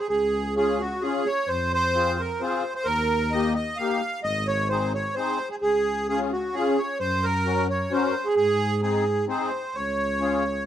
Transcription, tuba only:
0.09 C#2
1.49 F2
2.86 D#2
4.24 G#1
5.63 C#2
7.00 F#2
8.38 G#2
9.76 C#2

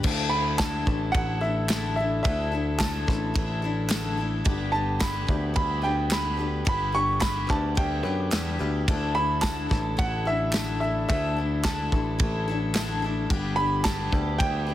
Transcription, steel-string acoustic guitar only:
0.03 D3 A3 D4 E4 A4
0.31 D4 E4 A4
0.59 D3 A3 D4 E4 A4
0.86 D4 E4 A4
1.13 A3 D4 E4 A4
1.41 D4 E4 A4
1.69 D3 A3 D4 E4 A4
1.97 D4 E4 A4
2.24 D3 A3 D4 E4 A4
2.52 D4 E4 A4
2.80 D3 A3 D4 E4 A4
3.07 D4 E4 A4
3.34 A3 D4 E4 A4
3.62 D4 E4 A4
3.90 D3 A3 D4 E4 A4
4.17 D4 E4 A4
4.45 G3 D4 G4 B4
4.72 D4 G4 B4
4.99 G3 D4 G4 B4
5.27 D4 G4 B4
5.54 G3 D4 G4 B4
5.82 D4 G4 B4
6.10 G3 D4 G4 B4
6.37 D4 G4 B4
6.65 G3 D4 G4 B4
6.92 D4 G4 B4
7.20 G3 D4 G4 B4
7.47 D4 G4 B4
7.75 G3 D4 G4 B4
8.03 D4 G4 B4
8.31 G3 D4 G4 B4
8.59 D4 G4 B4
8.88 D3 A3 D4 E4 A4
9.15 D4 E4 A4
9.42 D3 A3 D4 E4 A4
9.69 D4 E4 A4
9.97 A3 D4 E4 A4
10.25 D4 E4 A4
10.54 D3 A3 D4 E4 A4
10.81 D4 E4 A4
11.08 D3 A3 D4 E4 A4
11.37 D4 E4 A4
11.65 D3 A3 D4 E4 A4
11.92 D4 E4 A4
12.19 A3 D4 E4 A4
12.48 D4 E4 A4
12.74 D3 A3 D4 E4 A4
13.02 D4 E4 A4
13.30 G3 D4 G4 B4
13.57 D4 G4 B4
13.85 G3 D4 G4 B4
14.12 D4 G4 B4
14.39 G3 D4 G4 B4
14.67 D4 G4 B4

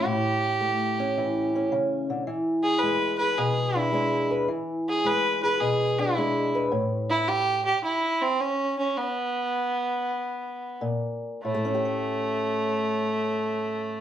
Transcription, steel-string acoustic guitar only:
Already playing: E3
0.05 A2
0.60 A3
0.99 C#4
1.17 E3
1.55 C#4
1.72 C#3
2.10 D3
2.27 E3
2.82 G#3
3.21 G#4
3.38 B2
3.76 D4
3.92 G#3 D4
4.31 B4
4.48 E3
5.04 G#3
5.43 G#4
5.61 B2
5.99 D4
6.17 G#3 D4
6.55 B4
6.72 A2
10.81 A#2
11.45 A2
11.54 A3
11.65 C#4
11.74 G4
11.85 C#5

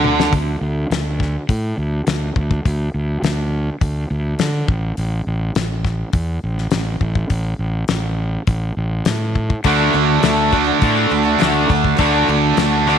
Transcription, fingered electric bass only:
Already playing: D2
0.33 D2
0.61 D2
0.90 D2
1.50 A2
1.78 D2
2.07 D2
2.36 D2
2.65 D2
2.94 D2
3.22 D2
3.81 D2
4.11 D2
4.39 D3
4.68 A1
4.98 A1
5.27 A1
5.56 A1
6.14 E2
6.44 A1
6.72 A1
7.01 A1
7.30 A1
7.59 A1
7.90 A1
8.47 A1
8.77 A1
9.06 A2
9.65 D2
9.94 D2
10.24 D2
10.82 A2
11.11 D2
11.42 D2
11.70 D2
11.99 D2
12.28 D2
12.57 D2

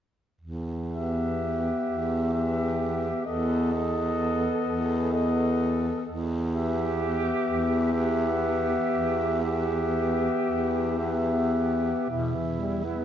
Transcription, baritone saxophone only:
0.41 E2
1.87 E2
3.26 E2
4.67 E2
6.07 E2
7.46 E2
8.92 E2
10.45 E2
12.10 E2

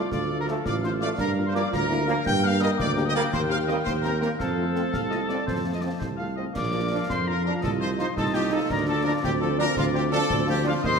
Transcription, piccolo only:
Already playing: D6
0.13 D6
0.40 A#5
0.50 A5
0.66 D6
0.84 C6
1.01 D6
1.20 A#5
1.46 C6
1.55 D6
1.73 A#5
2.26 G6
2.43 F6
2.61 D#6
2.78 D6
3.05 D#6
3.14 D6
3.33 C6
3.51 F6
3.69 D#6
3.86 C6
4.05 A#5
4.22 A#5
4.41 A5
6.56 D6
7.10 C6
7.28 A#5
7.46 A#5
7.65 A5
7.82 C6
8.00 C6
8.17 A5
8.34 G5
8.53 A5
8.71 A#5
8.90 A5
9.07 A#5
9.24 G5
9.43 A5
9.60 A#5
9.78 F5
9.95 G5
10.13 A5
10.49 G5
10.67 F5
10.85 C6

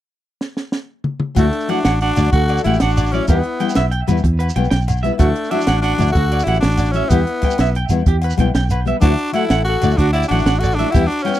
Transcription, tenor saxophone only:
1.38 A3
1.70 D4
2.01 D4
2.32 F#4
2.64 E4
2.81 D4
3.12 C#4
3.28 B3
5.19 A3
5.50 D4
5.81 D4
6.12 F#4
6.44 E4
6.60 D4
6.92 C#4
7.09 B3
9.01 D4
9.33 E4
9.64 F#4
9.97 D4
10.13 E4
10.28 D4
10.59 F#4
10.74 D4
10.90 E4
11.07 D4
11.23 C#4

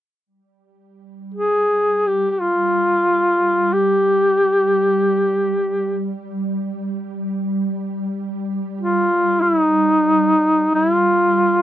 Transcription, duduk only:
1.34 G#4
2.07 G4
2.30 G4
2.41 F4
3.73 G4
8.81 F4
9.42 E4
9.61 D#4
10.75 E4
10.94 F4

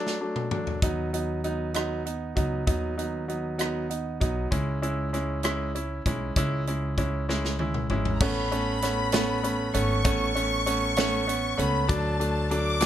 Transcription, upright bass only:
0.82 D#2
2.36 C#2
2.67 D#2
4.21 B1
4.52 C#2
6.06 B1
6.36 C#2
7.90 G#1
8.21 A1
9.75 G#1
10.05 A1
11.58 C#2
11.89 D2

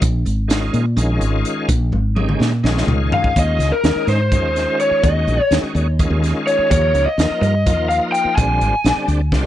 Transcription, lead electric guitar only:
3.14 F5
3.39 D#5
3.72 A#4
4.09 C5
4.80 C#5
5.04 D#5
6.47 C#5
6.71 C#5
7.06 D#5
7.42 D#5
7.89 F5
8.12 G5
8.36 G#5

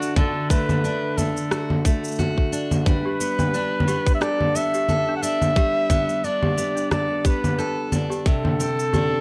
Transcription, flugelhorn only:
Already playing: F#4
0.16 A4
0.50 B4
1.17 A4
2.86 B4
4.14 E5
4.21 D5
4.56 E5
5.17 F#5
5.22 E5
6.25 D5
6.92 D5
7.27 B4
8.26 A4

